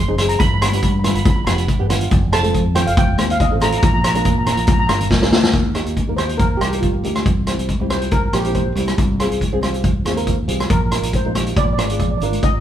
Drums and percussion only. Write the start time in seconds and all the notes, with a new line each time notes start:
0.18 cross-stick, closed hi-hat, low conga
0.29 closed hi-hat
0.40 kick, closed hi-hat
0.62 cross-stick, closed hi-hat
0.72 closed hi-hat, high conga
0.83 kick, closed hi-hat
1.04 cross-stick, closed hi-hat, high conga, low conga
1.15 closed hi-hat
1.25 kick, closed hi-hat, high conga
1.47 cross-stick, closed hi-hat, high conga
1.58 closed hi-hat
1.68 kick, closed hi-hat
1.90 cross-stick, closed hi-hat, low conga
2.01 closed hi-hat
2.11 kick, closed hi-hat
2.33 cross-stick, closed hi-hat
2.44 closed hi-hat, high conga
2.54 kick, closed hi-hat
2.75 cross-stick, closed hi-hat, high conga, low conga
2.87 closed hi-hat
2.97 kick, closed hi-hat, high conga
3.18 cross-stick, closed hi-hat, high conga
3.30 closed hi-hat
3.40 kick, closed hi-hat
3.60 cross-stick, closed hi-hat, low conga
3.72 closed hi-hat
3.83 kick, closed hi-hat
4.04 cross-stick, closed hi-hat
4.14 closed hi-hat, high conga
4.25 kick, closed hi-hat
4.46 cross-stick, closed hi-hat, low conga
4.57 closed hi-hat
4.67 kick, closed hi-hat, high conga
4.89 cross-stick, closed hi-hat, high conga
5.01 closed hi-hat, low conga
5.10 kick, snare
5.22 snare, high conga
5.31 snare, low conga
5.43 snare, low conga
5.53 kick, closed hi-hat
5.75 cross-stick, closed hi-hat
5.86 closed hi-hat
5.97 kick, closed hi-hat
6.07 high conga
6.17 cross-stick, closed hi-hat, low conga
6.29 closed hi-hat
6.39 kick, closed hi-hat
6.61 cross-stick, closed hi-hat, high conga
6.73 closed hi-hat
6.82 kick, closed hi-hat, high conga
7.04 closed hi-hat, low conga
7.15 cross-stick, closed hi-hat, high conga
7.26 kick, closed hi-hat
7.47 cross-stick, closed hi-hat
7.59 closed hi-hat
7.69 kick, closed hi-hat
7.81 high conga
7.90 cross-stick, closed hi-hat, low conga
8.02 closed hi-hat
8.11 kick, closed hi-hat
8.33 cross-stick, closed hi-hat, high conga
8.45 closed hi-hat
8.54 kick, closed hi-hat, high conga
8.76 closed hi-hat, low conga
8.87 cross-stick, closed hi-hat, high conga
8.98 kick, closed hi-hat
9.20 cross-stick, closed hi-hat
9.32 closed hi-hat
9.41 kick, closed hi-hat
9.51 high conga
9.62 cross-stick, closed hi-hat, low conga
9.74 closed hi-hat
9.84 kick, closed hi-hat
10.05 cross-stick, closed hi-hat, high conga
10.17 closed hi-hat
10.27 kick, closed hi-hat, high conga
10.48 closed hi-hat, low conga
10.60 cross-stick, closed hi-hat, high conga
10.70 kick, closed hi-hat
10.92 cross-stick, closed hi-hat
11.03 closed hi-hat
11.13 kick, closed hi-hat
11.25 high conga
11.35 cross-stick, closed hi-hat, high conga, low conga
11.46 closed hi-hat
11.56 kick, closed hi-hat, low conga
11.77 cross-stick, closed hi-hat, high conga
11.90 closed hi-hat
11.99 kick, closed hi-hat, high conga
12.20 closed hi-hat, low conga
12.32 closed hi-hat, high conga
12.43 kick, closed hi-hat